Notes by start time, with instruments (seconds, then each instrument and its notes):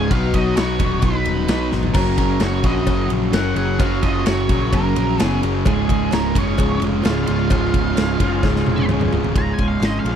Already playing: overdriven electric guitar C#3, twelve-string acoustic guitar C#4 F4 C#5
0.10 picked electric bass B1, overdriven electric guitar B2 F#3 B3, twelve-string acoustic guitar B2 D#3 F#3 B3 D#4 B4, tonewheel organ D#4 F#4 B4 D#5, lead electric guitar F5, kick, ride
0.33 picked electric bass B1, twelve-string acoustic guitar F#3 B3 D#4 B4, lead electric guitar F#4 D#5, kick, ride
0.56 picked electric bass B1, twelve-string acoustic guitar F#3 B3 D#4 B4, lead electric guitar F#4 C#5, snare, ride
0.79 picked electric bass D#1, overdriven electric guitar B2 F#3 B3, twelve-string acoustic guitar F#3 B3 D#4 B4, kick, ride
1.02 picked electric bass B1, twelve-string acoustic guitar B2 D#3 F#3 B3 D#4 B4, lead electric guitar B4, kick, ride
1.25 picked electric bass D#1, twelve-string acoustic guitar F#3 B3 D#4 B4, ride
1.48 picked electric bass B1, overdriven electric guitar B2 F#3 B3, twelve-string acoustic guitar F#3 B3 D#4 B4, snare, ride
1.72 picked electric bass G#1, twelve-string acoustic guitar F#3 B3 D#4 B4, snare
1.83 floor tom
1.94 picked electric bass F#1, overdriven electric guitar F#2 C#3 F#3, twelve-string acoustic guitar F#3 C#4 F#4 A#4, tonewheel organ C#4 F#4 A#4 C#5, lead electric guitar A#4, kick, crash, cowbell
2.18 picked electric bass F#1, twelve-string acoustic guitar C#4 F#4 A#4, lead electric guitar A#4, kick, ride
2.40 picked electric bass F#1, twelve-string acoustic guitar F#3 C#4 F#4 A#4, lead electric guitar C#5, snare, ride, cowbell
2.64 picked electric bass A#1, overdriven electric guitar F#2 C#3 F#3, twelve-string acoustic guitar C#4 F#4 A#4, lead electric guitar D#5, kick, ride
2.87 picked electric bass F#1, twelve-string acoustic guitar F#3 C#4 F#4 A#4, kick, ride, cowbell
3.10 picked electric bass A#1, twelve-string acoustic guitar C#4 F#4 A#4, ride
3.32 picked electric bass F#1, overdriven electric guitar F#2 C#3 F#3, twelve-string acoustic guitar F#3 C#4 F#4, lead electric guitar F#5, snare, ride, cowbell
3.36 twelve-string acoustic guitar A#4
3.56 picked electric bass F#1, twelve-string acoustic guitar C#4 F#4 A#4, lead electric guitar G#4 F#5, ride
3.79 picked electric bass F#1, overdriven electric guitar F#2 C#3 F#3, twelve-string acoustic guitar F#3 C#4 F#4 A#4, lead electric guitar F5, kick, ride, cowbell
4.02 picked electric bass F#1, twelve-string acoustic guitar C#4 F#4 A#4, lead electric guitar F4 D#5, kick, ride
4.26 picked electric bass F#1, twelve-string acoustic guitar F#3 C#4 F#4 A#4, lead electric guitar C#5, snare, ride, cowbell
4.49 picked electric bass A#1, overdriven electric guitar F#2 C#3 F#3, twelve-string acoustic guitar F#4 A#4, kick, ride
4.53 twelve-string acoustic guitar C#4
4.73 picked electric bass F#1, twelve-string acoustic guitar F#3 C#4 F#4 A#4, lead electric guitar A#4, kick, ride, cowbell
4.96 picked electric bass A#1, twelve-string acoustic guitar C#4 F#4 A#4, ride
5.18 picked electric bass F#1, overdriven electric guitar F#2 C#3 F#3, twelve-string acoustic guitar F#3 C#4 F#4 A#4, snare, ride, cowbell
5.23 lead electric guitar B3 G#4
5.42 picked electric bass F#1, twelve-string acoustic guitar C#4 F#4 A#4, ride
5.64 picked electric bass C#1, overdriven electric guitar C#2 G#2 C#3, twelve-string acoustic guitar C#3 G#3 C#4 F4 G#4, tonewheel organ D4 F#4 A4 D5, lead electric guitar G#4, kick, ride, cowbell
5.82 tonewheel organ C#4 F4 G#4 C#5
5.89 picked electric bass C#1, twelve-string acoustic guitar C#4 F4 G#4, kick, ride
6.11 picked electric bass C#1, twelve-string acoustic guitar G#3 C#4 F4 G#4, lead electric guitar A#4, snare, ride, cowbell
6.34 picked electric bass F#1, overdriven electric guitar C#2 G#2 C#3, twelve-string acoustic guitar C#4 F4 G#4, lead electric guitar C#5, kick, ride
6.58 picked electric bass C#1, twelve-string acoustic guitar C#3 G#3 C#4 F4 G#4, kick, ride, cowbell
6.81 picked electric bass F1, twelve-string acoustic guitar C#4 F4, ride
7.02 picked electric bass C#1, overdriven electric guitar C#2 G#2, twelve-string acoustic guitar G#3 C#4, lead electric guitar F4 F5, snare, ride, cowbell
7.06 overdriven electric guitar C#3, twelve-string acoustic guitar F4 G#4
7.27 picked electric bass C#1, twelve-string acoustic guitar C#4 F4 G#4, lead electric guitar F5, ride
7.50 picked electric bass C#1, overdriven electric guitar C#2 G#2 C#3, twelve-string acoustic guitar C#3 G#3 C#4 F4 G#4, tonewheel organ C#4 F4 G#4 C#5, kick, ride, cowbell
7.74 picked electric bass C#1, twelve-string acoustic guitar C#4 F4 G#4, kick, ride
7.97 picked electric bass C#1, twelve-string acoustic guitar G#3 C#4 F4 G#4, snare, ride, cowbell
8.20 picked electric bass F#1, overdriven electric guitar C#2 G#2 C#3, twelve-string acoustic guitar C#4 F4 G#4, kick, ride
8.43 picked electric bass C#1, twelve-string acoustic guitar C#3 G#3 C#4 F4 G#4, kick, snare, cowbell
8.56 snare
8.66 picked electric bass F1, twelve-string acoustic guitar C#4 F4 G#4, high tom
8.78 high tom
8.89 picked electric bass C#1, overdriven electric guitar C#2 G#2 C#3, twelve-string acoustic guitar G#3 C#4 F4 G#4, mid tom, cowbell
9.01 mid tom
9.12 picked electric bass C#1, twelve-string acoustic guitar C#4 F4 G#4, floor tom
9.24 floor tom
9.34 picked electric bass C#1, overdriven electric guitar C#2 G#2 C#3 G#3 F4, twelve-string acoustic guitar C#3 G#3 C#4 F4 G#4, tonewheel organ C#4 F4 G#4 C#5, lead electric guitar A#5, kick, ride
9.54 lead electric guitar G#5
9.58 picked electric bass C#1, overdriven electric guitar C#3 G#3 F4, twelve-string acoustic guitar C#4 F4 G#4, kick, ride
9.68 lead electric guitar F5
9.81 picked electric bass G#1, overdriven electric guitar G#2 C#3 G#3 F4, twelve-string acoustic guitar G#3 C#4 F4 G#4, snare, ride
9.85 lead electric guitar D#5
10.00 lead electric guitar F5
10.05 picked electric bass A#1, overdriven electric guitar C#3 G#3 F4, twelve-string acoustic guitar C#4 F4 G#4, ride